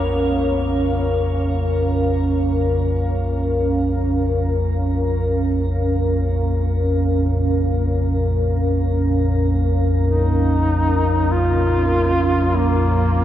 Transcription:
Already playing: analog synth pad C#4 A#4 F5, ambient pad C#5
0.05 synth drone A#1 F2
10.07 duduk D#4
11.31 duduk F4
12.56 duduk A#3

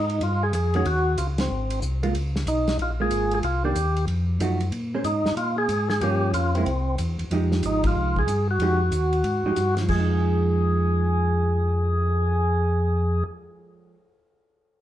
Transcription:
Already playing: tonewheel organ G#2 D#4
0.10 ride
0.21 tonewheel organ G2 F4, ride
0.43 tonewheel organ G#4
0.53 tonewheel organ F2 G#4, hi-hat pedal, ride
0.74 hollow-body jazz guitar D#3 G#3 C#4 F#4, tonewheel organ G#4, ride
0.85 tonewheel organ D#2 F#4, ride
1.18 tonewheel organ C#2 F4, hi-hat pedal, ride
1.38 tonewheel organ C4, snare, ride
1.50 tonewheel organ G#1
1.70 ride
1.82 tonewheel organ C2, hi-hat pedal
2.03 hollow-body jazz guitar G#3 A#3 F4, ride
2.14 tonewheel organ C#2, ride
2.36 snare
2.46 tonewheel organ B1 D#4, hi-hat pedal, ride
2.68 snare, ride
2.78 tonewheel organ A#1, ride
2.82 tonewheel organ F4
3.00 hollow-body jazz guitar G#3 A#3 F4, tonewheel organ G#4
3.10 tonewheel organ G#1, hi-hat pedal, ride
3.31 tonewheel organ G#4, ride
3.43 tonewheel organ C2 F4, ride
3.64 hollow-body jazz guitar D#3 A#3 D4, tonewheel organ G4
3.75 tonewheel organ D#2, hi-hat pedal, ride
3.97 ride
4.07 tonewheel organ F2, ride
4.39 tonewheel organ F#2, hollow-body jazz guitar F3 A3 D#4 F#4, hi-hat pedal, ride
4.60 ride
4.72 tonewheel organ A#2, ride
4.94 hollow-body jazz guitar A#3 C#4 G#4 C5
5.04 tonewheel organ G#2 D#4, hi-hat pedal, ride
5.26 tonewheel organ G#2, snare
5.36 tonewheel organ A#2 F4, ride
5.58 tonewheel organ G#4
5.69 tonewheel organ G#2, hi-hat pedal, ride
5.90 tonewheel organ G#4, snare
6.01 tonewheel organ G2 G4, hollow-body jazz guitar F3 A#3 C#4, ride
6.33 tonewheel organ F2 F4, hi-hat pedal, ride
6.55 hollow-body jazz guitar G#3 A#3 E4, tonewheel organ C4, ride
6.65 tonewheel organ C2, ride
6.98 tonewheel organ E2, hi-hat pedal, ride
7.18 tonewheel organ E2, ride
7.31 tonewheel organ F2, hollow-body jazz guitar F3 G#3 D#4 G4, ride
7.52 snare
7.63 tonewheel organ G#1 D#4, hi-hat pedal, ride
7.84 tonewheel organ F4, kick, ride
7.95 tonewheel organ C2
8.16 tonewheel organ G#4, kick
8.27 tonewheel organ G2, hi-hat pedal, ride
8.51 tonewheel organ F#4
8.58 tonewheel organ F2, hollow-body jazz guitar F3 G#3 D#4 G4, ride
8.91 tonewheel organ D#2, hi-hat pedal, ride
9.13 ride
9.24 tonewheel organ G#2, ride
9.45 tonewheel organ G#2, hollow-body jazz guitar F3 G#3 D#4 G4
9.56 tonewheel organ G2, hi-hat pedal, ride
9.77 snare, ride
9.81 hollow-body jazz guitar F3
9.88 tonewheel organ F2 G#4, hollow-body jazz guitar G#3, kick, crash
9.99 hollow-body jazz guitar D#4
10.09 cymbal swell

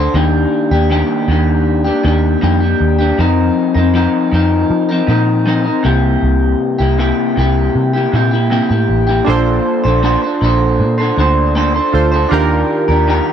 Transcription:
Already playing: clean electric guitar A4 C5
0.00 clean electric guitar D4
0.14 picked electric bass D#2, clean electric guitar D#3 A#3 D4 G4
0.71 picked electric bass D#2, clean electric guitar A#3 D4 G4
0.90 clean electric guitar D#3 A#3 D4 G4
1.28 picked electric bass D#2, clean electric guitar D#3 A#3 D4 G4
1.84 clean electric guitar A#3 D4 G4
2.03 picked electric bass D#2, clean electric guitar D#3 A#3 D4 G4
2.41 picked electric bass F2, clean electric guitar D#3 A#3 D4 G4
2.60 clean electric guitar A#3 D4 G4
2.81 picked electric bass D#2
2.99 clean electric guitar A#3 D4 G4
3.18 picked electric bass F2, clean electric guitar F3 C4 D#4 A#4
3.74 picked electric bass F2, clean electric guitar C4 D#4 A#4
3.94 clean electric guitar F3 C4 D#4 A#4
4.32 picked electric bass F2, clean electric guitar F3 C4 D#4 A#4
4.70 picked electric bass F3
4.89 clean electric guitar C4 D#4 A#4
5.07 picked electric bass A#2, clean electric guitar F3 C4 D#4 A#4
5.46 clean electric guitar F3 C4 D#4 A#4
5.64 clean electric guitar C4 D#4 A#4
5.83 picked electric bass C2, clean electric guitar C3 A#3 E4 G4
6.23 picked electric bass C2
6.78 picked electric bass C2, clean electric guitar A#3 E4 G4
6.98 clean electric guitar C3 A#3 E4 G4
7.36 picked electric bass C2, clean electric guitar C3 A#3 E4 G4
7.76 picked electric bass C3
7.93 clean electric guitar A#3 E4 G4
8.12 picked electric bass A#2, clean electric guitar C3 A#3 E4 G4
8.31 clean electric guitar A#3 E4 G4
8.50 clean electric guitar C3 A#3 E4 G4
8.69 picked electric bass A2, clean electric guitar A#3 E4 G4
8.89 picked electric bass A1
9.07 clean electric guitar A#3 E4 G4
9.25 picked electric bass A#1, clean electric guitar A#3 D4 A4, synth keys D4 F4 A4
9.29 clean electric guitar C5, synth keys C5
9.84 picked electric bass A#1, clean electric guitar D4 A4 C5
10.03 clean electric guitar A#3 D4 A4 C5
10.22 clean electric guitar D4 A4 C5
10.41 picked electric bass A#1, clean electric guitar A#3 D4 A4 C5
10.79 picked electric bass A#2
10.98 clean electric guitar D4 A4 C5
11.17 picked electric bass D2, clean electric guitar A#3 D4 A4 C5
11.55 clean electric guitar A#3 D4 A4 C5
11.74 clean electric guitar D4 A4 C5
11.92 picked electric bass D2, synth keys D4 F4 A4 C5
12.12 clean electric guitar D4 A4 C5
12.29 picked electric bass D#2, clean electric guitar D#3 D4, synth keys D4 F4 G4
12.33 clean electric guitar G4 A#4, synth keys A#4
12.88 picked electric bass D#2, clean electric guitar D4 G4 A#4
13.08 clean electric guitar D#3 D4 G4 A#4

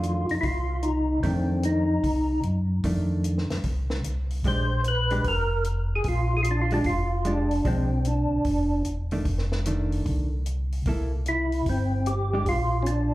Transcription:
Already playing: tonewheel organ F2 F4, hollow-body jazz guitar D#3 A3 D4
0.03 closed hi-hat
0.29 tonewheel organ F2 D#4, open hi-hat
0.41 tonewheel organ C2 E4 F4, kick, open hi-hat
0.83 tonewheel organ D#4, closed hi-hat
1.23 tonewheel organ F2 C4, hollow-body jazz guitar D#3 A3 D4, kick, open hi-hat
1.63 tonewheel organ D#4, closed hi-hat
2.03 tonewheel organ C2, kick, open hi-hat
2.43 tonewheel organ F#2, closed hi-hat
2.84 tonewheel organ F2, hollow-body jazz guitar D#3 A3 D4, kick, open hi-hat
3.24 closed hi-hat
3.38 snare
3.50 tonewheel organ F2, snare, open hi-hat
3.63 tonewheel organ C2, kick, open hi-hat
3.90 snare
4.04 tonewheel organ C2, closed hi-hat
4.30 open hi-hat
4.44 tonewheel organ A#1 C5, hollow-body jazz guitar G#3 D4 G4, kick, open hi-hat
4.84 tonewheel organ B4, closed hi-hat
5.10 hollow-body jazz guitar G#3 D4 G4, open hi-hat
5.24 tonewheel organ F1 A#4, kick, open hi-hat
5.64 closed hi-hat
5.95 tonewheel organ G#4
6.04 tonewheel organ A#1, kick, open hi-hat
6.08 tonewheel organ F4
6.37 tonewheel organ G#4
6.43 tonewheel organ F4, closed hi-hat
6.51 tonewheel organ D4
6.62 tonewheel organ F4
6.71 hollow-body jazz guitar G#3 D4 G4, tonewheel organ D4, open hi-hat
6.84 tonewheel organ F1 F4, kick, open hi-hat
7.25 hollow-body jazz guitar G#3 D4 G4, tonewheel organ D4, closed hi-hat
7.51 open hi-hat
7.65 tonewheel organ B1 C4, hollow-body jazz guitar F3 G#3 D4, kick, open hi-hat
8.05 tonewheel organ D4, closed hi-hat
8.31 tonewheel organ B1
8.44 tonewheel organ F1, kick, open hi-hat
8.85 tonewheel organ E1, closed hi-hat
9.11 hollow-body jazz guitar D#3 A3 D4, open hi-hat
9.25 tonewheel organ F1, kick, open hi-hat
9.38 snare
9.52 snare
9.65 hollow-body jazz guitar D#3 A3 D4, closed hi-hat
9.92 open hi-hat
10.06 tonewheel organ C2, kick, open hi-hat
10.46 closed hi-hat
10.72 open hi-hat
10.86 tonewheel organ C2, hollow-body jazz guitar A#3 E4 A4, kick, open hi-hat
11.26 tonewheel organ E4, closed hi-hat
11.52 open hi-hat
11.66 tonewheel organ G1 C4, kick, open hi-hat
12.06 tonewheel organ G4, closed hi-hat
12.33 hollow-body jazz guitar G#3 D4 G4
12.46 tonewheel organ A#1 F4, kick, open hi-hat
12.83 tonewheel organ C#4, closed hi-hat
12.87 tonewheel organ D4

